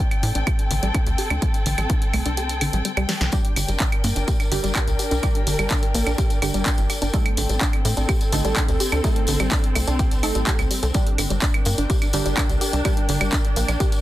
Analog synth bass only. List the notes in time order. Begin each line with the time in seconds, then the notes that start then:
0.23 A2
0.35 A1
0.71 A1
0.83 A1
1.07 D2
1.30 D2
1.66 A1
1.78 A1
2.14 C2
2.26 C2
2.61 A1
2.73 A1
2.97 C2
3.21 C2
3.56 G1
3.69 G1
4.04 G2
4.16 G1
4.52 G1
4.64 G1
4.88 C2
5.11 C2
5.47 G1
5.59 G1
5.94 A#1
6.07 A#1
6.42 G1
6.54 G1
6.78 G1
7.02 G1
7.37 A1
7.49 A1
7.85 A2
7.97 A1
8.33 A1
8.45 A1
8.69 D2
8.92 D2
9.28 A1
9.40 A1
9.75 C2
9.88 C2
10.23 A1
10.35 A1
10.59 C2
10.83 C2
11.18 G1
11.30 G1
11.66 G2
11.78 G1
12.14 G1
12.26 G1
12.50 C2
12.73 C2
13.09 G1
13.21 G1
13.56 A#1
13.69 A#1